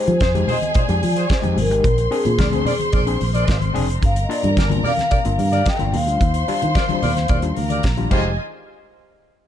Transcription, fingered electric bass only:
0.08 F3
0.22 F2
0.89 F2
1.03 F3
1.44 F2
1.58 G1
1.71 G#1
1.85 A#1
2.26 A#2
2.39 D2
2.93 A#1
3.22 A#1
3.49 G#1
3.76 F1
4.03 G1
4.44 G2
4.57 G1
5.26 G1
5.39 G2
5.81 G1
5.94 D#2
6.09 D2
6.21 D#2
6.63 D#3
7.04 D#2
7.30 D#2
7.58 D2
7.84 A#1
8.12 F1

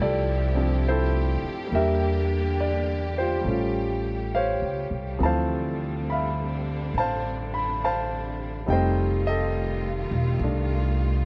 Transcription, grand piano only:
Already playing: G3 A3 C4 E4 A4 C5 E5 G5
0.00 G4 A4 D5
0.54 F3 C4 D4
0.89 E4 A4 C5
1.67 G3
1.72 A#3 D4 G4 A#4 E5
1.79 G4
2.60 D5
3.18 F4 G4 C5
3.40 G3
3.44 A3 C#4
3.51 F4
4.35 C5 C#5 F5
5.19 E3 F3 A3 C4
5.23 C5 F5 A5
6.10 E5 F5 B5
6.98 C5 F5 A5
7.54 B5
7.84 C5 F5 A5
8.66 G3 A3 C4 D#4 G5
8.72 C5 D#5
9.27 G4 A4 D#5
10.41 A3 D4

